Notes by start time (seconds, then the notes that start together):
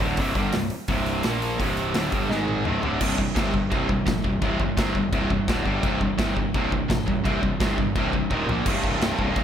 0.00 D1 D2 A2 D3
0.17 C1 C2 G2 C3, kick, open hi-hat
0.35 G1 G2 D3 G3, kick, open hi-hat
0.53 C1 C2 G2, snare, open hi-hat
0.70 open hi-hat
0.88 C1 C2 G2 C3, kick, open hi-hat
1.06 open hi-hat
1.23 A#1 A#2 F3 A#3, snare, open hi-hat
1.42 open hi-hat
1.58 C1 C2 G2 C3, kick, open hi-hat
1.77 open hi-hat
1.94 D1 D2 A2 D3, snare, open hi-hat
2.11 G1 G2 D3 G3, kick, open hi-hat
2.29 G#1 G#2 D#3 G#3, snare
2.48 high tom
2.65 C1 C2 G2 C3, mid tom
2.83 D1 D2 A2 D3, floor tom
3.00 C1 C2 G2 C3, kick, crash, china
3.17 C2 G2, kick
3.34 G1 C2 G2 C3, kick, snare, china
3.52 C2 G2, kick
3.71 C1 C2 G2 C3, kick, china
3.89 C2 G2, kick
4.06 A#1 C2 G2, kick, snare, china
4.24 D#1 C2 G2, kick
4.42 C1 C2 G2 C3, kick, china
4.60 C2 G2, kick
4.77 G1 C2 G2 C3, kick, snare, china
4.95 C2 G2, kick
5.13 C1 C2 G2 C3, kick, china
5.30 C2 G2, kick
5.48 D1 D2 A2 D3, kick, snare, china
5.64 G1 G2 D3 G3, kick
5.81 C1 C2 G2 C3, kick, china
6.00 C2 G2, kick
6.18 G1 C2 G2 C3, kick, snare, china
6.36 C2 G2, kick
6.54 C1 C2 G2 C3, kick, china
6.72 C2 G2, kick
6.89 A#1 C2 G2, kick, snare, china
7.07 D#1 C2 G2, kick
7.24 C1 C2 G2 C3, kick, china
7.41 C2 G2, kick
7.60 G1 C2 G2 C3, kick, snare, china
7.78 C2 G2, kick
7.95 C1 C2 G2 C3, kick, china
8.13 C2 G2, kick
8.30 D#1 D#2 A#2 D#3, kick
8.46 A#1 A#2 F3 A#3, floor tom
8.65 C1 C2 G2, kick, crash, china
8.74 C2 G2
8.82 C1 C2 G2, kick
8.89 C2 G2
8.97 C1 C2 G2
9.02 snare, china
9.06 C2 G2
9.13 C2 G2
9.19 C1 C2 G2, kick
9.29 C2 G2
9.36 C1 C2 G2, kick, china